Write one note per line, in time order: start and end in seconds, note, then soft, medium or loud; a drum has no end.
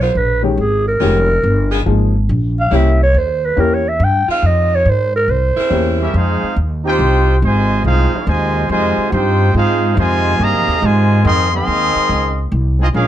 0.00 0.14 B1 loud
0.00 0.11 C#3 medium
0.00 0.11 G#3 medium
0.00 0.11 B3 medium
0.00 0.11 F4 loud
0.00 0.19 C5 medium
0.15 0.57 A#1 medium
0.15 0.44 B4 medium
0.42 0.56 D#3 medium
0.42 0.56 G#3 medium
0.42 0.57 C#4 medium
0.42 0.61 D#4 soft
0.42 0.57 G4 medium
0.57 0.99 G#1 medium
0.57 0.87 G#4 medium
0.88 1.83 A#4 medium
1.00 1.42 F1 medium
1.00 1.20 C#3 loud
1.00 1.26 D#3 medium
1.00 1.20 G#3 medium
1.00 1.26 G#3 medium
1.00 1.20 B3 medium
1.00 1.27 C#4 medium
1.00 1.20 F4 loud
1.00 1.27 G4 medium
1.43 1.85 G1 loud
1.71 1.81 C#3 loud
1.71 1.81 G#3 loud
1.71 1.81 B3 loud
1.71 1.81 G#4 loud
1.86 2.28 G#1 medium
1.86 2.12 F3 medium
1.86 2.12 A#3 medium
1.86 2.13 D#4 medium
1.86 2.12 G#4 medium
2.29 2.71 A#1 loud
2.60 2.77 F5 medium
2.71 3.13 C2 loud
2.71 2.90 C#3 medium
2.71 2.91 A#3 medium
2.71 2.97 A#3 medium
2.71 2.91 C4 medium
2.71 2.98 C#4 medium
2.71 2.91 E4 loud
2.71 2.98 E4 medium
2.71 2.98 G4 medium
2.76 3.02 E5 loud
3.03 3.19 C#5 loud
3.14 3.56 D#2 loud
3.14 3.47 C5 medium
3.45 3.62 B4 loud
3.56 3.99 E2 medium
3.56 3.83 A#3 medium
3.56 3.83 C#4 medium
3.56 3.83 E4 medium
3.56 3.83 G4 medium
3.60 3.76 A#4 medium
3.74 3.90 C#5 medium
3.89 4.06 E5 medium
4.00 4.26 G2 loud
4.04 4.31 G5 loud
4.28 4.83 D#3 loud
4.28 4.83 G#3 medium
4.28 4.83 C4 medium
4.28 4.83 F4 loud
4.28 4.48 F5 medium
4.28 muted upright bass stroke soft
4.43 4.84 F2 loud
4.47 4.77 D#5 loud
4.75 4.91 C#5 loud
4.86 5.27 G#2 loud
4.86 5.15 C5 loud
5.16 5.32 A#4 medium
5.28 5.54 C2 medium
5.28 6.08 C5 loud
5.56 6.11 C#3 loud
5.56 6.11 A#3 loud
5.56 6.11 C4 loud
5.56 6.11 E4 loud
5.56 muted upright bass stroke soft
5.70 6.12 E2 loud
5.70 5.96 A#3 medium
5.70 5.96 C#4 medium
5.70 5.96 E4 medium
5.70 5.97 G4 medium
6.00 6.13 G3 medium
6.00 6.13 A#3 medium
6.00 6.13 C#4 medium
6.00 6.13 E4 medium
6.00 6.14 G4 medium
6.00 6.14 A#4 medium
6.00 6.14 E5 medium
6.13 6.40 F2 loud
6.13 6.56 G#3 medium
6.13 6.56 C4 medium
6.13 6.57 D#4 medium
6.13 6.57 F4 medium
6.13 6.57 G#4 medium
6.13 6.57 C5 medium
6.13 6.57 F5 loud
6.43 muted upright bass stroke soft
6.56 6.98 D#2 loud
6.84 7.37 C4 medium
6.84 7.37 D#4 medium
6.84 7.39 F4 medium
6.84 7.38 G4 medium
6.84 7.39 C5 medium
6.84 7.39 D#5 medium
6.84 7.39 G5 loud
6.99 7.40 C2 loud
7.42 7.83 G#1 loud
7.42 7.84 C3 medium
7.42 7.84 D#3 medium
7.42 7.83 G#3 medium
7.42 7.86 F4 medium
7.42 7.84 C5 medium
7.42 7.86 D#5 medium
7.42 7.85 G#5 loud
7.84 8.11 C2 medium
7.84 8.24 G#3 medium
7.84 8.24 C4 medium
7.84 8.24 D#4 medium
7.84 8.24 F4 medium
7.84 8.24 G#4 medium
7.84 8.24 C5 medium
7.84 8.25 F5 loud
8.27 8.68 D#2 loud
8.27 8.68 C3 medium
8.27 8.68 D#3 medium
8.27 8.68 G#3 medium
8.27 8.69 F4 medium
8.27 8.69 C5 loud
8.27 8.69 D#5 medium
8.27 8.69 G#5 loud
8.69 8.96 F2 medium
8.69 9.09 C3 medium
8.69 9.09 D#3 loud
8.69 9.09 G#3 loud
8.69 9.09 F4 medium
8.69 9.09 C5 medium
8.69 9.10 D#5 medium
8.69 9.09 G#5 loud
8.97 muted upright bass stroke soft
9.11 9.53 G2 loud
9.11 9.52 C4 medium
9.11 9.54 D#4 medium
9.11 9.55 F4 medium
9.11 9.54 G4 medium
9.11 9.55 C5 medium
9.11 9.55 D#5 medium
9.11 9.55 G5 loud
9.53 9.96 G#2 medium
9.53 9.94 G#3 medium
9.53 9.93 C4 medium
9.53 9.95 D#4 medium
9.53 9.94 F4 medium
9.53 9.95 G#4 medium
9.53 9.95 C5 medium
9.53 9.95 F5 loud
9.95 10.38 F2 loud
9.95 10.37 C3 medium
9.95 10.37 D#3 medium
9.95 10.39 G#3 medium
9.99 10.41 F4 loud
9.99 10.41 C5 medium
9.99 10.41 D#5 loud
9.99 10.41 G#5 loud
10.38 10.54 G2 loud
10.38 10.79 C3 loud
10.38 10.79 D#3 medium
10.38 10.81 A#3 loud
10.38 10.83 G#4 medium
10.42 10.82 D#5 medium
10.42 10.83 F5 loud
10.42 10.83 A#5 loud
10.54 10.67 F2 medium
10.68 10.81 D#2 medium
10.80 11.23 G#2 loud
10.80 11.24 C3 medium
10.80 11.22 D#3 medium
10.80 11.22 G#3 medium
10.80 11.25 F4 medium
10.80 11.26 C5 medium
10.80 11.24 D#5 medium
10.84 11.26 G#5 loud
11.23 11.66 F2 loud
11.23 11.50 D#3 loud
11.23 11.50 G#3 loud
11.23 11.50 C4 loud
11.23 11.52 G#4 loud
11.23 11.51 D#5 loud
11.23 11.51 F5 loud
11.23 11.52 C6 loud
11.52 12.44 D#3 loud
11.52 12.44 G#3 loud
11.52 12.44 C4 loud
11.52 12.45 G#4 loud
11.52 12.45 D#5 loud
11.52 12.45 F5 loud
11.52 12.45 C6 loud
11.67 11.94 D#2 loud
11.95 muted upright bass stroke soft
12.09 12.51 C#2 loud
12.52 12.93 C2 loud
12.79 12.86 G#3 medium
12.79 12.86 C4 medium
12.79 12.88 C4 medium
12.79 12.86 D#4 medium
12.79 12.88 F4 medium
12.79 12.88 G#4 medium
12.79 12.88 D#5 loud
12.93 13.07 A#1 medium
12.93 13.07 G#3 medium
12.93 13.07 C#4 medium
12.93 13.07 C#4 loud
12.93 13.07 F4 medium
12.93 13.07 G#4 medium
12.93 13.07 A#4 medium
12.93 13.07 F5 loud